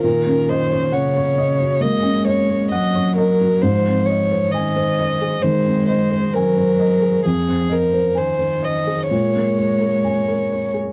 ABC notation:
X:1
M:4/4
L:1/16
Q:1/4=66
K:Abmix
V:1 name="Felt piano"
B,, D e d g d e G B, D e d g d e G | A,, C e c a c e A E, C e c a c e A | F,, C e c a c e A B,, B, d B a B d A |]
V:2 name="Violin"
B2 c2 d4 e2 d2 e2 B2 | c2 d2 e4 c2 c2 B4 | A2 B2 c2 e2 d8 |]
V:3 name="Cello" clef=bass
E,4 D,4 A,4 G,4 | F,4 E,4 A,4 G,4 | F,4 E,4 A,8 |]